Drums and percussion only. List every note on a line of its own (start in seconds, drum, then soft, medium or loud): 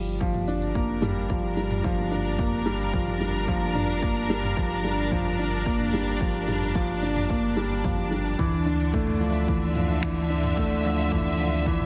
0.07 shaker soft
0.21 kick loud
0.21 shaker soft
0.34 mid tom medium
0.48 shaker medium
0.62 shaker soft
0.75 kick loud
1.03 mid tom medium
1.03 shaker medium
1.30 kick loud
1.30 shaker soft
1.57 shaker medium
1.71 mid tom medium
1.84 kick loud
1.84 shaker soft
2.12 shaker medium
2.25 shaker soft
2.39 kick loud
2.39 mid tom medium
2.39 shaker soft
2.66 shaker medium
2.80 shaker soft
2.94 kick loud
3.07 mid tom medium
3.21 shaker medium
3.48 kick loud
3.48 shaker soft
3.75 mid tom medium
3.75 shaker medium
4.03 kick loud
4.03 shaker soft
4.30 shaker medium
4.44 mid tom medium
4.44 shaker soft
4.57 kick loud
4.57 shaker soft
4.84 shaker medium
4.98 shaker soft
5.12 kick loud
5.12 mid tom medium
5.39 shaker medium
5.66 kick loud
5.66 shaker soft
5.80 mid tom medium
5.93 shaker medium
6.21 kick loud
6.21 shaker soft
6.48 mid tom medium
6.48 shaker medium
6.62 shaker soft
6.75 kick loud
6.75 shaker soft
7.02 shaker medium
7.16 mid tom medium
7.16 shaker soft
7.30 kick loud
7.57 shaker medium
7.85 kick loud
7.85 mid tom medium
7.85 shaker soft
8.12 shaker medium
8.39 kick loud
8.39 mid tom medium
8.39 shaker soft
8.66 shaker medium
8.80 shaker soft
8.94 kick loud
8.94 shaker soft
9.07 mid tom medium
9.21 shaker medium
9.35 shaker soft
9.48 kick loud
9.75 mid tom medium
9.75 shaker medium
10.03 finger snap medium
10.03 kick loud
10.03 shaker soft
10.30 shaker medium
10.44 mid tom medium
10.57 kick loud
10.57 shaker soft
10.84 shaker medium
10.98 shaker soft
11.12 kick loud
11.12 mid tom medium
11.12 shaker soft
11.39 shaker medium
11.53 shaker soft
11.66 kick medium
11.80 mid tom medium